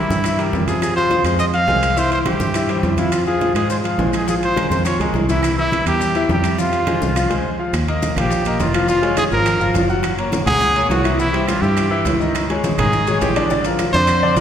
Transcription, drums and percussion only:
0.10 high conga, maracas
0.24 high bongo, high conga, high timbale, claves, maracas
0.39 high bongo, high conga, high timbale, maracas
0.53 high bongo, low bongo, high conga, low timbale, maracas
0.68 high bongo, high conga, high timbale, maracas
0.82 high bongo, high conga, high timbale, claves, maracas
0.97 high conga, maracas
1.10 high bongo, high conga, high timbale, low timbale, maracas
1.25 high conga, high timbale, claves, maracas
1.39 high bongo, high conga, maracas
1.54 high conga, high timbale, maracas
1.68 high bongo, low bongo, high conga, low timbale, maracas
1.83 high timbale, claves, maracas
1.97 high bongo, high conga, maracas
2.11 high bongo, high conga, high timbale, maracas
2.25 high bongo, high conga, high timbale, low timbale, claves, maracas
2.40 high conga, maracas
2.54 high bongo, high conga, high timbale, claves, maracas
2.69 high bongo, high conga, high timbale, maracas
2.83 high bongo, low bongo, high conga, low timbale, maracas
2.97 high bongo, high conga, high timbale, maracas
3.12 high bongo, high conga, high timbale, claves, maracas
3.26 high conga, maracas
3.41 high bongo, high conga, high timbale, low timbale, maracas
3.55 high conga, high timbale, claves, maracas
3.70 high bongo, high conga, maracas
3.84 high conga, high timbale, maracas
3.99 high bongo, low bongo, high conga, low timbale, maracas
4.13 high timbale, claves, maracas
4.28 high bongo, high conga, maracas
4.42 high bongo, high conga, high timbale, maracas
4.56 high bongo, high conga, high timbale, low timbale, claves, maracas
4.71 high conga, maracas
4.85 high bongo, high conga, high timbale, claves, maracas
4.99 high bongo, high conga, high timbale, maracas
5.14 high bongo, low bongo, high conga, low timbale, maracas
5.28 high bongo, high conga, high timbale, maracas
5.43 high bongo, high conga, high timbale, claves, maracas
5.58 high conga, maracas
5.72 high bongo, high conga, high timbale, low timbale, maracas
5.86 high conga, high timbale, claves, maracas
6.01 high bongo, high conga, maracas
6.15 high conga, high timbale, maracas
6.29 high bongo, low bongo, high conga, low timbale, maracas
6.44 high timbale, claves, maracas
6.58 high bongo, high conga, maracas
6.73 high bongo, high conga, high timbale, maracas
6.87 high bongo, high conga, high timbale, low timbale, claves, maracas
7.02 high conga, maracas
7.16 high bongo, high conga, high timbale, claves, maracas
7.31 high conga, high timbale, maracas
7.73 high bongo, high conga, high timbale, claves, maracas
7.88 high bongo, high conga, high timbale
8.02 high bongo, high conga, high timbale, low timbale, maracas
8.16 high bongo, high conga, low conga, high timbale, claves, maracas
8.31 high bongo, high conga, maracas
8.45 high bongo, high conga, high timbale, maracas
8.60 high bongo, low bongo, high conga, high timbale, low timbale, maracas
8.74 high conga, high timbale, claves, maracas
8.88 high bongo, high conga, maracas
9.03 high conga, high timbale
9.17 high bongo, high conga, high timbale, low timbale, claves, maracas
9.31 high bongo, high conga, maracas
9.46 high bongo, high conga, high timbale, claves, maracas
9.60 high bongo, high conga, maracas
9.74 high bongo, low bongo, high conga, high timbale, low timbale, maracas
9.89 high bongo, maracas
10.03 high bongo, high conga, high timbale, claves, maracas
10.18 high bongo, high conga, high timbale
10.32 high bongo, high conga, high timbale, low timbale, maracas
10.46 high bongo, high conga, low conga, high timbale, claves, maracas
10.61 high bongo, high conga, maracas
10.76 high bongo, high conga, high timbale
10.90 high bongo, low bongo, high conga, high timbale, low timbale, maracas
11.04 high conga, high timbale, claves, maracas
11.19 high bongo, high conga, maracas
11.34 high conga, high timbale
11.48 high bongo, high conga, high timbale, low timbale, claves, maracas
11.63 high bongo, high conga, maracas
11.77 high bongo, high conga, high timbale, claves, maracas
11.91 high bongo, high conga
12.05 high bongo, low bongo, high conga, high timbale, low timbale, maracas
12.20 high bongo, maracas
12.35 high bongo, high conga, high timbale, claves, maracas
12.49 high bongo, high conga, high timbale
12.64 high bongo, high conga, high timbale, low timbale, maracas
12.78 high bongo, high conga, low conga, high timbale, claves, maracas
12.93 high bongo, high conga, maracas
13.07 high bongo, high conga, high timbale, maracas
13.21 high bongo, low bongo, high conga, high timbale, low timbale, maracas
13.36 high conga, high timbale, claves, maracas
13.50 high bongo, high conga, maracas
13.64 high conga, high timbale, maracas
13.79 high bongo, high conga, high timbale, low timbale, claves, maracas
13.93 high bongo, high conga, maracas
14.07 high bongo, high conga, high timbale, claves, maracas
14.22 high bongo, high conga
14.36 high bongo, low bongo, high conga, high timbale, low timbale, maracas

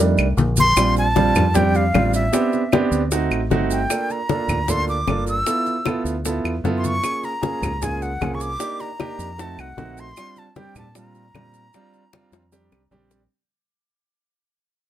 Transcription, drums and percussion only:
0.18 high conga, claves, maracas
0.37 cowbell, high conga, maracas
0.57 high conga, maracas
0.76 high bongo, high conga, claves, maracas
0.96 high bongo, high conga, maracas
1.16 high bongo, high conga, maracas
1.35 high conga, low conga, claves, maracas
1.55 high bongo, high conga, low conga, maracas
1.75 high bongo, high conga, maracas
1.94 high bongo, low bongo, high conga, claves, maracas
2.14 high bongo, maracas
2.33 high bongo, high conga, maracas
2.53 high bongo, high conga, maracas
2.72 high bongo, high conga, claves, maracas
2.92 maracas
3.11 high bongo, high conga, maracas
3.31 high bongo, high conga, claves, maracas
3.51 high bongo, low bongo, high conga, maracas
3.71 high bongo, maracas
3.90 high bongo, high conga, claves, maracas
4.10 high bongo, high conga, maracas
4.29 high bongo, high conga, maracas
4.49 high conga, low conga, claves, maracas
4.68 high bongo, high conga, low conga, maracas
4.88 high bongo, high conga, maracas
5.08 high bongo, low bongo, high conga, claves, maracas
5.27 high bongo, maracas
5.46 high bongo, high conga, maracas
5.66 high bongo, high conga, maracas
5.85 high bongo, high conga, claves, maracas
6.06 high conga, maracas
6.25 high bongo, high conga, maracas
6.45 high bongo, high conga, claves, maracas
6.65 high bongo, low bongo, high conga, maracas
6.84 high bongo, high conga, maracas
7.04 high bongo, high conga, claves, maracas
7.23 high bongo, high conga, maracas
7.43 high bongo, high conga, maracas
7.63 high conga, low conga, claves, maracas
7.82 high bongo, high conga, low conga, maracas
8.02 high bongo, high conga, maracas
8.21 high bongo, low bongo, high conga, claves, maracas
8.40 high bongo, maracas
8.60 high bongo, high conga, maracas
8.80 high bongo, high conga, maracas
9.00 high bongo, high conga, claves, maracas
9.19 high conga, maracas
9.39 high bongo, high conga, maracas
9.59 high bongo, high conga, claves, maracas
9.78 high bongo, low bongo, high conga, maracas
9.97 high bongo, maracas
10.17 high bongo, high conga, claves, maracas
10.36 high bongo, high conga, maracas
10.56 high bongo, high conga, maracas
10.75 high conga, low conga, claves, maracas
10.95 high bongo, maracas
11.15 high bongo, high conga, maracas
11.34 high bongo, low bongo, high conga, claves, maracas
11.54 high bongo, maracas
11.73 high bongo, high conga, maracas
11.93 high bongo, high conga, maracas
12.13 high bongo, high conga, claves, maracas
12.33 high bongo, high conga, maracas
12.52 low bongo, high conga, maracas
12.72 low bongo, high conga, claves, maracas
12.91 low bongo, high conga, maracas
13.11 low bongo, maracas

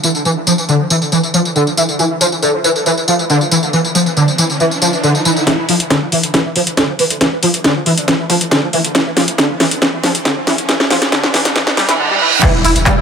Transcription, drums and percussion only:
0.03 tambourine
0.15 tambourine
0.25 tambourine
0.47 tambourine
0.58 tambourine
0.69 tambourine
0.90 tambourine
1.02 tambourine
1.12 tambourine
1.23 tambourine
1.34 tambourine
1.45 tambourine
1.56 tambourine
1.67 tambourine
1.77 tambourine
1.89 tambourine
1.99 tambourine
2.21 tambourine
2.32 tambourine
2.42 tambourine
2.64 tambourine
2.76 tambourine
2.86 tambourine
2.97 tambourine
3.08 tambourine
3.19 tambourine
3.30 tambourine
3.41 tambourine
3.51 tambourine
3.63 tambourine
3.73 tambourine
3.85 tambourine
3.95 tambourine
4.06 tambourine
4.17 tambourine
4.28 tambourine
4.38 tambourine
4.50 tambourine
4.60 tambourine
4.71 tambourine
4.82 tambourine
4.93 tambourine
5.03 tambourine
5.15 tambourine
5.25 tambourine
5.36 tambourine
5.47 kick, snare, closed hi-hat
5.69 open hi-hat
5.80 closed hi-hat
5.90 kick, snare, closed hi-hat
6.12 open hi-hat
6.23 closed hi-hat
6.34 kick, snare, closed hi-hat
6.56 open hi-hat
6.67 closed hi-hat
6.77 kick, snare, closed hi-hat
6.99 open hi-hat
7.10 closed hi-hat
7.21 kick, snare, closed hi-hat
7.43 open hi-hat
7.54 closed hi-hat
7.64 kick, snare, closed hi-hat
7.86 open hi-hat
7.98 closed hi-hat
8.08 kick, snare, closed hi-hat
8.30 kick, open hi-hat
8.41 closed hi-hat
8.51 kick, snare, closed hi-hat
8.73 open hi-hat
8.84 closed hi-hat
8.95 kick, snare, closed hi-hat
9.17 snare, open hi-hat
9.28 closed hi-hat
9.38 kick, snare, closed hi-hat
9.60 snare, open hi-hat
9.71 closed hi-hat
9.82 kick, snare, closed hi-hat
10.04 snare, open hi-hat
10.15 closed hi-hat
10.25 kick, snare, closed hi-hat
10.47 snare, open hi-hat
10.58 closed hi-hat
10.69 kick, snare, closed hi-hat
10.80 snare
10.90 snare, open hi-hat
11.02 snare, closed hi-hat
11.12 kick, snare, closed hi-hat
11.23 snare
11.34 snare, open hi-hat
11.45 snare, closed hi-hat
11.56 kick, snare, closed hi-hat
11.67 snare
11.77 kick, snare, open hi-hat
11.89 snare, closed hi-hat
12.43 kick, clap, closed hi-hat, crash, tambourine
12.64 open hi-hat, tambourine
12.76 closed hi-hat, tambourine
12.86 kick, clap, closed hi-hat, tambourine

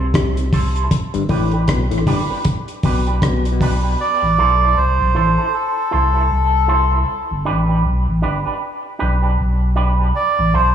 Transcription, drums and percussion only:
0.14 kick, cross-stick, closed hi-hat
0.37 closed hi-hat
0.53 kick, open hi-hat
0.76 closed hi-hat
0.91 kick, closed hi-hat
1.14 closed hi-hat
1.29 kick, open hi-hat
1.52 closed hi-hat
1.68 kick, cross-stick, closed hi-hat
1.91 closed hi-hat
2.07 kick, open hi-hat
2.45 kick, closed hi-hat
2.68 closed hi-hat
2.83 kick, open hi-hat
3.07 closed hi-hat
3.22 kick, cross-stick, closed hi-hat
3.45 closed hi-hat
3.61 kick, open hi-hat

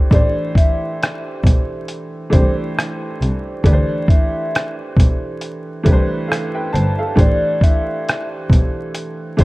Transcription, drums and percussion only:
0.11 kick, closed hi-hat
0.55 kick, closed hi-hat
1.03 cross-stick, closed hi-hat
1.44 kick, closed hi-hat
1.88 closed hi-hat
2.33 kick, closed hi-hat
2.79 cross-stick, closed hi-hat
3.22 closed hi-hat
3.64 kick, closed hi-hat
4.08 kick, closed hi-hat
4.55 cross-stick, closed hi-hat
4.97 kick, closed hi-hat
5.41 closed hi-hat
5.86 kick, closed hi-hat
6.32 cross-stick, closed hi-hat
6.75 closed hi-hat
7.17 kick, closed hi-hat
7.61 kick, closed hi-hat
8.09 cross-stick, closed hi-hat
8.50 kick, closed hi-hat
8.95 closed hi-hat
9.39 kick, closed hi-hat

